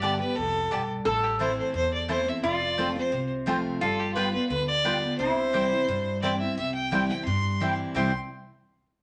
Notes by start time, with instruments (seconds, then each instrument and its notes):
Already playing: upright bass G1, steel-string acoustic guitar G2, resonator guitar played with a steel bar G4
0.02 steel-string acoustic guitar D3 G3 B3 G4, mandolin B3 G4 D5 A5, fiddle D5
0.20 steel-string acoustic guitar B3 G4, fiddle B4
0.36 upright bass C2, steel-string acoustic guitar F2, fiddle A4
0.71 upright bass B1, steel-string acoustic guitar G2, mandolin B3 G4 D5 A5
1.05 upright bass A1, steel-string acoustic guitar A2, resonator guitar played with a steel bar A4, fiddle A4
1.23 fiddle G4
1.39 steel-string acoustic guitar E3 A3 C4 E4, mandolin A3 E4 C5 A5, fiddle C5
1.58 fiddle C5
1.74 steel-string acoustic guitar E2, upright bass E2, fiddle C5
1.94 fiddle D5
2.09 steel-string acoustic guitar E3 A3 C4 E4, mandolin A3 E4 C5 A5, fiddle C5
2.27 steel-string acoustic guitar C4 E4, fiddle E5
2.43 upright bass F1, steel-string acoustic guitar F2, resonator guitar played with a steel bar F4, fiddle D5
2.78 steel-string acoustic guitar F3 A3 C4 F4, mandolin C4 F4 C5 A5
2.96 steel-string acoustic guitar C4 F4, fiddle C5
3.12 upright bass C2, steel-string acoustic guitar C3
3.46 steel-string acoustic guitar F3 A3 C4 F4, mandolin C4 F4 C5 A5
3.81 upright bass G1, steel-string acoustic guitar G3, resonator guitar played with a steel bar F4, fiddle A4
4.00 fiddle G4
4.15 steel-string acoustic guitar G3 B3 F4, mandolin B3 F4 B4 G5, fiddle B4
4.33 steel-string acoustic guitar B3 F4, fiddle B4
4.49 upright bass D2, steel-string acoustic guitar D3, fiddle B4
4.68 fiddle D5
4.84 steel-string acoustic guitar G3 B3 F4, mandolin B3 F4 B4 G5
5.03 steel-string acoustic guitar B3 F4
5.19 upright bass C2, steel-string acoustic guitar C3, resonator guitar played with a steel bar E4, fiddle C5
5.53 steel-string acoustic guitar E3 G3 C4 E4, mandolin C4 E4 C5 G5
5.72 steel-string acoustic guitar C4 E4
5.88 upright bass G2, steel-string acoustic guitar G2
6.22 steel-string acoustic guitar E3 G3 C4 E4, mandolin C4 E4 C5 G5, fiddle D5
6.40 steel-string acoustic guitar C4 E4, fiddle E5
6.57 upright bass C2, steel-string acoustic guitar C3, fiddle E5
6.75 fiddle G5
6.91 steel-string acoustic guitar E3 G3 C4 E4, mandolin C4 E4 C5 G5
7.08 steel-string acoustic guitar C4 E4, fiddle G5
7.25 upright bass G2, steel-string acoustic guitar G2, fiddle C6
7.60 steel-string acoustic guitar E3 G3 C4 E4, mandolin C4 E4 C5 G5
7.94 upright bass C2, steel-string acoustic guitar C3 E3 G3 C4 E4, mandolin C4 E4 C5 G5, fiddle C6